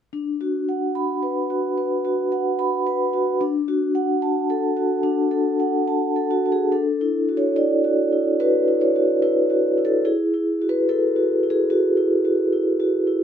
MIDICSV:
0, 0, Header, 1, 2, 480
1, 0, Start_track
1, 0, Tempo, 820793
1, 71, Time_signature, 4, 2, 24, 8
1, 2950, Tempo, 833333
1, 6310, Tempo, 815217
1, 7698, End_track
2, 0, Start_track
2, 0, Title_t, "Vibraphone"
2, 0, Program_c, 0, 11
2, 75, Note_on_c, 0, 62, 40
2, 189, Control_c, 0, 64, 127
2, 238, Note_on_c, 0, 66, 34
2, 401, Note_on_c, 0, 78, 34
2, 494, Note_off_c, 0, 66, 0
2, 557, Note_on_c, 0, 83, 35
2, 655, Note_off_c, 0, 78, 0
2, 717, Note_on_c, 0, 71, 34
2, 813, Note_off_c, 0, 83, 0
2, 878, Note_on_c, 0, 66, 33
2, 973, Note_off_c, 0, 71, 0
2, 1015, Note_off_c, 0, 62, 0
2, 1038, Note_on_c, 0, 71, 37
2, 1134, Note_off_c, 0, 66, 0
2, 1197, Note_on_c, 0, 66, 37
2, 1295, Note_off_c, 0, 71, 0
2, 1357, Note_on_c, 0, 78, 39
2, 1454, Note_off_c, 0, 66, 0
2, 1514, Note_on_c, 0, 83, 44
2, 1613, Note_off_c, 0, 78, 0
2, 1676, Note_on_c, 0, 71, 41
2, 1770, Note_off_c, 0, 83, 0
2, 1833, Note_on_c, 0, 66, 38
2, 1931, Note_off_c, 0, 71, 0
2, 1992, Note_on_c, 0, 62, 50
2, 1994, Note_off_c, 0, 66, 0
2, 2005, Control_c, 0, 64, 0
2, 2110, Control_c, 0, 64, 127
2, 2153, Note_on_c, 0, 66, 42
2, 2310, Note_on_c, 0, 78, 40
2, 2408, Note_off_c, 0, 66, 0
2, 2469, Note_on_c, 0, 81, 42
2, 2566, Note_off_c, 0, 78, 0
2, 2631, Note_on_c, 0, 69, 42
2, 2726, Note_off_c, 0, 81, 0
2, 2787, Note_on_c, 0, 66, 36
2, 2887, Note_off_c, 0, 69, 0
2, 2927, Note_off_c, 0, 62, 0
2, 2942, Note_on_c, 0, 62, 47
2, 3044, Note_off_c, 0, 66, 0
2, 3104, Note_on_c, 0, 69, 38
2, 3268, Note_on_c, 0, 78, 38
2, 3361, Note_off_c, 0, 69, 0
2, 3429, Note_on_c, 0, 81, 40
2, 3526, Note_off_c, 0, 78, 0
2, 3593, Note_on_c, 0, 69, 38
2, 3677, Note_on_c, 0, 66, 41
2, 3693, Note_off_c, 0, 81, 0
2, 3757, Note_off_c, 0, 66, 0
2, 3764, Note_on_c, 0, 66, 31
2, 3800, Note_on_c, 0, 68, 46
2, 3858, Note_off_c, 0, 69, 0
2, 3895, Note_off_c, 0, 62, 0
2, 3914, Note_on_c, 0, 62, 36
2, 3915, Note_on_c, 0, 69, 48
2, 3922, Note_off_c, 0, 68, 0
2, 3925, Note_off_c, 0, 66, 0
2, 3931, Control_c, 0, 64, 0
2, 4035, Control_c, 0, 64, 127
2, 4083, Note_on_c, 0, 64, 34
2, 4241, Note_on_c, 0, 66, 31
2, 4279, Note_off_c, 0, 69, 0
2, 4291, Note_on_c, 0, 73, 49
2, 4339, Note_off_c, 0, 64, 0
2, 4398, Note_on_c, 0, 64, 31
2, 4401, Note_on_c, 0, 74, 53
2, 4406, Note_off_c, 0, 73, 0
2, 4497, Note_off_c, 0, 66, 0
2, 4562, Note_on_c, 0, 66, 32
2, 4656, Note_off_c, 0, 64, 0
2, 4723, Note_on_c, 0, 64, 29
2, 4818, Note_off_c, 0, 66, 0
2, 4855, Note_off_c, 0, 62, 0
2, 4882, Note_off_c, 0, 74, 0
2, 4882, Note_on_c, 0, 71, 57
2, 4884, Note_on_c, 0, 66, 35
2, 4978, Note_off_c, 0, 64, 0
2, 5044, Note_on_c, 0, 64, 30
2, 5120, Note_off_c, 0, 71, 0
2, 5121, Note_on_c, 0, 73, 45
2, 5136, Note_off_c, 0, 66, 0
2, 5205, Note_on_c, 0, 66, 31
2, 5294, Note_off_c, 0, 64, 0
2, 5356, Note_off_c, 0, 73, 0
2, 5357, Note_on_c, 0, 64, 33
2, 5357, Note_on_c, 0, 71, 49
2, 5453, Note_off_c, 0, 66, 0
2, 5516, Note_on_c, 0, 66, 33
2, 5609, Note_off_c, 0, 64, 0
2, 5677, Note_on_c, 0, 64, 30
2, 5712, Note_off_c, 0, 71, 0
2, 5717, Note_on_c, 0, 69, 51
2, 5768, Note_off_c, 0, 66, 0
2, 5826, Note_off_c, 0, 64, 0
2, 5833, Note_on_c, 0, 64, 43
2, 5834, Note_off_c, 0, 69, 0
2, 5834, Note_on_c, 0, 68, 47
2, 5842, Control_c, 0, 64, 0
2, 5952, Control_c, 0, 64, 127
2, 5993, Note_off_c, 0, 64, 0
2, 5999, Note_on_c, 0, 64, 31
2, 6159, Note_on_c, 0, 66, 32
2, 6193, Note_off_c, 0, 68, 0
2, 6203, Note_on_c, 0, 71, 51
2, 6252, Note_off_c, 0, 64, 0
2, 6317, Note_off_c, 0, 71, 0
2, 6317, Note_on_c, 0, 69, 52
2, 6318, Note_on_c, 0, 64, 32
2, 6412, Note_off_c, 0, 66, 0
2, 6476, Note_on_c, 0, 66, 34
2, 6572, Note_off_c, 0, 64, 0
2, 6637, Note_on_c, 0, 64, 31
2, 6675, Note_off_c, 0, 69, 0
2, 6678, Note_on_c, 0, 68, 51
2, 6730, Note_off_c, 0, 66, 0
2, 6794, Note_on_c, 0, 66, 49
2, 6795, Note_off_c, 0, 68, 0
2, 6890, Note_off_c, 0, 64, 0
2, 6954, Note_on_c, 0, 64, 33
2, 7110, Note_off_c, 0, 66, 0
2, 7117, Note_on_c, 0, 66, 33
2, 7209, Note_off_c, 0, 64, 0
2, 7281, Note_on_c, 0, 64, 33
2, 7370, Note_off_c, 0, 66, 0
2, 7440, Note_on_c, 0, 66, 37
2, 7531, Note_off_c, 0, 64, 0
2, 7602, Note_on_c, 0, 64, 33
2, 7692, Note_off_c, 0, 66, 0
2, 7698, Note_off_c, 0, 64, 0
2, 7698, End_track
0, 0, End_of_file